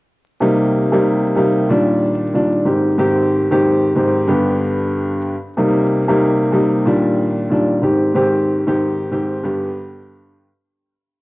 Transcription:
0.40 C3 G3 A#3 D#4
0.92 C3 G3 A#3 D#4
1.36 C3 G3 A#3 D#4
1.69 A#2 D#3 G3 D4
2.33 A#2 D#3 G3 D4
2.65 G#2 D#3 C4 G4
2.98 G#2 D#3 C4 G4
3.50 G#2 D#3 C4 G4
3.95 G#2 D#3 C4 G4
4.27 G2 D3 B3 G4
5.57 C3 G3 A#3 D#4
6.08 C3 G3 A#3 D#4
6.52 C3 G3 A#3 D#4
6.85 A#2 D#3 G3 D4
7.50 A#2 D#3 G3 D4
7.81 G#2 D#3 C4 G4
8.14 G#2 D#3 C4 G4
8.67 G#2 D#3 C4 G4
9.11 G#2 D#3 C4 G4
9.43 G2 D3 B3 G4

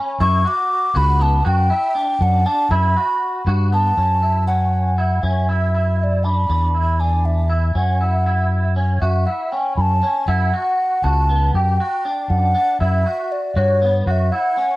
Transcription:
Already playing: C#4
0.20 F#2 E4 C#6
0.45 F#4 D6
0.95 C#2 F#4 B5
1.20 B3 A5
1.45 F#2 F#4 G5
1.70 E4
1.95 D4
2.21 F#2 F#5
2.46 D4 A5
2.71 F#2 E4 B5
2.97 F#4
3.46 G2 F#4
3.72 B3 A5
3.97 F#2 C#4
4.22 E4
4.47 C#4 F#5
4.98 E4
5.23 F#2 C#4 E5
5.49 E4
5.75 E4
5.99 E5
6.04 D5
6.24 D4 B5
6.49 E2 D4
6.74 E4
6.99 D4 G#5
7.25 E5
7.50 E4
7.75 F#2 C#4 F#5
8.01 E4
8.26 E4
8.76 C#4
9.01 F#2 F#4 E5
9.26 E4 F#5
9.52 C#4 G5
9.76 F#2 B5
9.81 A5
10.03 C#4
10.28 F#2 E4 F#5
10.54 F#4
11.04 C#2 F#4 A5
11.30 B3
11.54 F#2 G4 G5
11.80 F#4
12.05 D4
12.30 F#2 F#5
12.55 D4
12.80 F#2 E4 E5
13.06 F#4
13.32 D5
13.56 G2 F#4 C#5
13.82 B3
14.06 F#2 F#4 F#5
14.11 E5
14.32 E4 F#5
14.57 C#4

